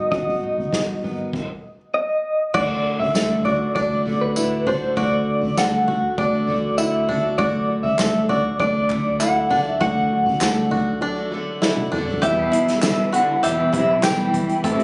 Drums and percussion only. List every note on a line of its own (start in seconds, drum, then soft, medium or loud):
0.12 kick medium
0.12 floor tom medium
0.27 mid tom medium
0.58 floor tom medium
0.73 kick medium
0.73 snare medium
1.04 mid tom medium
1.33 kick medium
1.33 crash medium
2.54 kick medium
2.54 floor tom medium
2.54 crash medium
3.00 floor tom medium
3.15 snare medium
3.15 tambourine medium
3.45 floor tom medium
3.76 kick loud
4.06 floor tom medium
4.36 tambourine medium
4.66 floor tom medium
4.97 kick medium
4.97 floor tom medium
5.42 floor tom medium
5.57 snare medium
5.57 tambourine medium
5.88 floor tom medium
6.18 kick loud
6.48 floor tom medium
6.78 tambourine medium
7.09 floor tom medium
7.39 kick loud
7.39 floor tom medium
7.84 floor tom medium
7.99 snare medium
7.99 clap medium
7.99 tambourine medium
8.29 floor tom medium
8.60 kick loud
8.90 clap medium
8.90 floor tom medium
9.20 clap medium
9.20 tambourine loud
9.50 floor tom medium
9.81 kick loud
9.81 floor tom medium
10.26 floor tom medium
10.41 snare medium
10.41 clap medium
10.41 tambourine medium
10.71 floor tom medium
11.62 snare medium
11.77 high tom medium
11.93 mid tom medium
12.08 floor tom medium
12.23 kick loud
12.23 closed hi-hat medium
12.53 closed hi-hat medium
12.68 snare soft
12.68 closed hi-hat soft
12.82 snare loud
12.82 clap medium
12.82 closed hi-hat medium
12.82 tambourine medium
13.14 closed hi-hat medium
13.44 closed hi-hat medium
13.73 kick medium
13.73 closed hi-hat medium
14.03 snare loud
14.03 clap medium
14.03 closed hi-hat medium
14.03 tambourine loud
14.34 kick medium
14.34 closed hi-hat medium
14.49 closed hi-hat soft
14.64 kick loud
14.64 closed hi-hat medium
14.80 closed hi-hat soft